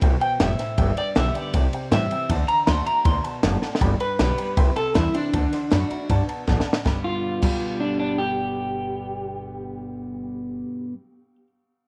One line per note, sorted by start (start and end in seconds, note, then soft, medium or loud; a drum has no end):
0.01 0.19 C2 loud
0.01 0.38 B2 medium
0.01 0.14 C5 medium
0.01 0.14 E5 medium
0.01 0.14 G5 loud
0.01 kick loud
0.01 ride medium
0.21 0.33 C5 medium
0.21 0.33 E5 medium
0.21 0.41 G5 loud
0.21 0.33 G5 medium
0.21 muted upright bass stroke medium
0.21 ride medium
0.40 0.57 F1 loud
0.40 0.76 A2 loud
0.40 0.52 C5 loud
0.40 0.52 E5 medium
0.40 0.96 E5 loud
0.40 0.52 G5 loud
0.40 snare loud
0.40 ride medium
0.59 0.70 C5 medium
0.59 0.71 E5 medium
0.59 0.71 G5 medium
0.59 muted upright bass stroke medium
0.59 snare soft
0.59 ride medium
0.78 0.95 G1 medium
0.78 1.50 G2 medium
0.78 0.89 B4 loud
0.78 0.90 D5 medium
0.78 0.90 G5 loud
0.78 kick loud
0.78 ride medium
0.97 1.09 B4 medium
0.97 1.16 D5 loud
0.97 1.09 D5 medium
0.97 1.09 G5 medium
0.97 muted upright bass stroke medium
0.97 ride medium
1.15 1.33 B1 loud
1.15 1.52 D3 medium
1.15 1.52 G3 medium
1.15 1.52 B3 loud
1.15 1.53 G4 medium
1.15 1.27 B4 medium
1.15 1.27 D5 medium
1.15 1.35 E5 loud
1.15 1.28 G5 loud
1.15 snare loud
1.15 ride medium
1.34 1.47 B4 medium
1.34 1.90 D5 medium
1.34 1.47 D5 medium
1.34 1.47 G5 medium
1.34 muted upright bass stroke medium
1.34 ride medium
1.53 1.71 C2 medium
1.53 2.26 C3 medium
1.53 1.65 C5 medium
1.53 1.66 E5 medium
1.53 1.66 G5 medium
1.53 kick loud
1.53 ride loud
1.72 1.84 C5 medium
1.72 1.85 E5 medium
1.72 1.85 G5 medium
1.72 muted upright bass stroke medium
1.72 ride medium
1.91 2.09 A2 loud
1.91 2.10 E3 medium
1.91 2.10 G3 loud
1.91 2.10 C4 loud
1.91 2.09 E4 medium
1.91 2.04 C5 loud
1.91 2.29 E5 loud
1.91 2.04 E5 medium
1.91 2.04 G5 loud
1.91 snare loud
1.91 ride medium
2.10 2.30 C4 medium
2.10 2.29 E4 medium
2.10 2.23 C5 medium
2.10 2.23 E5 medium
2.10 2.23 G5 medium
2.10 muted upright bass stroke medium
2.10 ride medium
2.29 2.47 D2 medium
2.29 2.66 D3 medium
2.29 2.41 D5 loud
2.29 2.41 F#5 loud
2.29 2.41 A5 loud
2.29 kick loud
2.29 ride medium
2.48 2.60 D5 medium
2.48 2.60 F#5 medium
2.48 2.67 A#5 loud
2.48 2.60 B5 medium
2.48 muted upright bass stroke medium
2.48 ride medium
2.67 2.85 D2 medium
2.67 2.85 D3 medium
2.67 2.86 A3 loud
2.67 2.86 D4 medium
2.67 2.84 F#4 loud
2.67 2.79 D5 medium
2.67 2.79 F#5 medium
2.67 2.80 A5 loud
2.67 2.86 C6 medium
2.67 snare loud
2.67 ride medium
2.85 3.05 D4 soft
2.85 3.04 F#4 medium
2.85 2.98 D5 medium
2.85 2.98 A5 medium
2.85 3.05 A#5 medium
2.85 muted upright bass stroke medium
2.85 ride medium
3.05 3.23 D2 medium
3.05 3.41 B2 medium
3.05 3.17 D5 medium
3.05 3.17 F#5 medium
3.05 3.17 A5 medium
3.05 3.24 C6 medium
3.05 kick loud
3.05 ride medium
3.24 3.36 D5 medium
3.24 3.36 F#5 medium
3.24 3.80 A5 loud
3.24 3.36 A5 medium
3.24 muted upright bass stroke medium
3.24 ride medium
3.43 3.60 F#1 loud
3.43 3.79 A2 medium
3.43 3.55 D5 loud
3.43 3.55 F#5 medium
3.43 3.55 A5 loud
3.43 snare loud
3.43 ride medium
3.62 3.74 D5 medium
3.62 3.74 F#5 medium
3.62 3.74 A5 medium
3.62 muted upright bass stroke medium
3.62 snare medium
3.75 snare medium
3.81 3.95 G1 loud
3.81 4.54 G2 medium
3.81 3.93 D5 loud
3.81 3.93 G5 loud
3.81 3.93 B5 loud
3.81 kick loud
3.81 ride medium
4.00 4.74 B4 loud
4.00 4.12 D5 medium
4.00 4.12 G5 medium
4.00 4.12 B5 medium
4.00 muted upright bass stroke medium
4.00 ride medium
4.19 4.33 B1 loud
4.19 4.37 D3 medium
4.19 4.38 G3 medium
4.19 4.38 B3 medium
4.19 4.36 G4 loud
4.19 4.31 D5 medium
4.19 4.31 G5 medium
4.19 4.31 B5 medium
4.19 snare loud
4.19 ride medium
4.38 4.57 B3 medium
4.38 4.56 G4 medium
4.38 4.50 D5 medium
4.38 4.50 G5 medium
4.38 4.50 B5 medium
4.38 muted upright bass stroke medium
4.38 ride medium
4.57 4.71 C2 medium
4.57 5.29 C3 medium
4.57 4.69 E5 loud
4.57 4.69 G5 loud
4.57 4.69 C6 loud
4.57 kick loud
4.57 ride medium
4.76 4.95 A4 medium
4.76 4.88 E5 medium
4.76 4.88 G5 medium
4.76 4.88 C6 medium
4.76 muted upright bass stroke medium
4.76 ride medium
4.94 5.09 E2 loud
4.94 5.13 E3 medium
4.94 5.14 G3 medium
4.94 5.14 C4 medium
4.94 5.14 E4 medium
4.94 5.13 E4 loud
4.94 5.07 E5 medium
4.94 5.07 G5 medium
4.94 5.07 C6 medium
4.94 kick medium
4.94 snare loud
4.94 ride medium
5.14 5.33 C4 medium
5.14 6.25 D4 medium
5.14 5.32 E4 medium
5.14 5.26 E5 medium
5.14 5.26 G5 medium
5.14 5.26 C6 medium
5.14 muted upright bass stroke medium
5.14 ride medium
5.33 5.47 D2 medium
5.33 5.69 D3 medium
5.33 5.45 D5 loud
5.33 5.45 F#5 medium
5.33 5.45 A5 loud
5.33 kick loud
5.33 ride medium
5.53 5.64 D5 medium
5.53 5.64 F#5 medium
5.53 5.64 C6 medium
5.53 muted upright bass stroke medium
5.53 snare soft
5.53 ride medium
5.70 5.86 F#2 medium
5.70 5.89 D3 medium
5.70 5.90 A3 medium
5.70 5.90 D4 medium
5.70 5.89 F#4 medium
5.70 5.83 D5 medium
5.70 5.83 F#5 medium
5.70 5.83 B5 loud
5.70 snare loud
5.70 ride medium
5.90 6.09 D4 soft
5.90 6.08 F#4 medium
5.90 6.02 D5 medium
5.90 6.02 F#5 medium
5.90 6.02 B5 medium
5.90 muted upright bass stroke medium
5.90 ride medium
6.09 6.24 G2 medium
6.09 6.46 B2 medium
6.09 6.21 D5 loud
6.09 6.21 F#5 loud
6.09 6.21 A5 loud
6.09 kick loud
6.09 ride medium
6.28 6.40 D5 medium
6.28 6.40 F#5 medium
6.28 6.40 A5 loud
6.28 muted upright bass stroke medium
6.28 ride medium
6.47 6.61 A1 loud
6.47 6.84 A2 medium
6.47 6.59 D5 medium
6.47 6.59 F#5 medium
6.47 6.59 A5 loud
6.47 kick medium
6.47 snare medium
6.60 snare medium
6.66 6.78 D5 medium
6.66 6.78 F#5 medium
6.66 6.78 A5 medium
6.66 muted upright bass stroke medium
6.73 snare loud
6.83 6.96 G1 medium
6.83 7.41 G2 medium
6.83 7.42 B2 medium
6.83 7.43 D3 medium
6.83 7.43 G3 medium
6.83 6.95 D5 medium
6.83 6.96 G5 medium
6.83 kick loud
6.83 snare medium
6.87 7.44 B3 medium
6.87 7.44 G4 medium
6.87 6.97 B5 medium
7.04 7.78 F4 loud
7.40 10.61 G1 medium
7.40 10.92 G2 medium
7.40 10.92 B2 medium
7.40 10.93 D3 medium
7.40 10.94 G3 medium
7.40 10.94 B3 medium
7.40 10.59 D5 medium
7.40 10.61 G5 medium
7.40 10.62 B5 medium
7.40 kick loud
7.40 crash medium
7.45 10.95 G4 loud
7.80 7.98 D4 medium
8.00 8.18 D4 medium
8.18 11.35 G4 medium